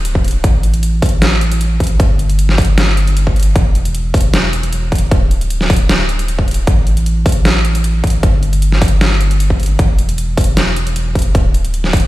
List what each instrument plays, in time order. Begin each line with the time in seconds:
Already playing: sub bass D1
0.05 closed hi-hat
0.15 kick
0.24 closed hi-hat
0.28 closed hi-hat
0.31 closed hi-hat
0.44 sub bass A1, kick, closed hi-hat
0.63 closed hi-hat
0.74 closed hi-hat
0.83 closed hi-hat
1.02 kick, closed hi-hat, open hi-hat
1.09 closed hi-hat
1.22 snare, closed hi-hat
1.41 closed hi-hat
1.52 closed hi-hat
1.61 closed hi-hat
1.80 kick, closed hi-hat
1.84 closed hi-hat
1.87 closed hi-hat
2.00 sub bass G1, kick, closed hi-hat
2.19 closed hi-hat
2.30 closed hi-hat
2.39 closed hi-hat
2.49 snare
2.58 kick, closed hi-hat, open hi-hat
2.65 closed hi-hat
2.78 snare, closed hi-hat
2.97 closed hi-hat
3.07 closed hi-hat
3.17 closed hi-hat
3.27 kick
3.36 closed hi-hat
3.40 closed hi-hat
3.43 closed hi-hat
3.56 sub bass E1, kick, closed hi-hat
3.75 closed hi-hat
3.85 closed hi-hat
3.95 closed hi-hat
4.14 kick, closed hi-hat, open hi-hat
4.21 closed hi-hat
4.34 snare, closed hi-hat
4.53 closed hi-hat
4.63 closed hi-hat
4.73 closed hi-hat
4.92 kick, closed hi-hat
4.95 closed hi-hat
4.98 closed hi-hat
5.11 sub bass D1, kick, closed hi-hat
5.31 closed hi-hat
5.41 closed hi-hat
5.50 closed hi-hat
5.61 snare
5.70 kick, closed hi-hat, open hi-hat
5.76 closed hi-hat
5.89 snare, closed hi-hat
6.09 closed hi-hat
6.19 closed hi-hat
6.28 closed hi-hat
6.39 kick
6.48 closed hi-hat
6.51 closed hi-hat
6.54 closed hi-hat
6.67 sub bass A1, kick, closed hi-hat
6.87 closed hi-hat
6.97 closed hi-hat
7.06 closed hi-hat
7.26 kick, closed hi-hat, open hi-hat
7.32 closed hi-hat
7.45 snare, closed hi-hat
7.65 closed hi-hat
7.75 closed hi-hat
7.84 closed hi-hat
8.04 kick, closed hi-hat
8.07 closed hi-hat
8.10 closed hi-hat
8.23 sub bass G1, kick, closed hi-hat
8.43 closed hi-hat
8.53 closed hi-hat
8.62 closed hi-hat
8.72 snare
8.82 kick, closed hi-hat, open hi-hat
8.88 closed hi-hat
9.01 snare, closed hi-hat
9.21 closed hi-hat
9.31 closed hi-hat
9.40 closed hi-hat
9.50 kick
9.60 closed hi-hat
9.63 closed hi-hat
9.66 closed hi-hat
9.79 sub bass E1, kick, closed hi-hat
9.99 closed hi-hat
10.09 closed hi-hat
10.18 closed hi-hat
10.37 kick, closed hi-hat, open hi-hat
10.44 closed hi-hat
10.57 snare, closed hi-hat
10.76 closed hi-hat
10.87 closed hi-hat
10.96 closed hi-hat
11.15 kick, closed hi-hat
11.19 closed hi-hat
11.22 closed hi-hat
11.35 sub bass D1, kick, closed hi-hat
11.54 closed hi-hat
11.65 closed hi-hat
11.74 closed hi-hat
11.84 snare
11.93 kick, closed hi-hat, open hi-hat
12.00 closed hi-hat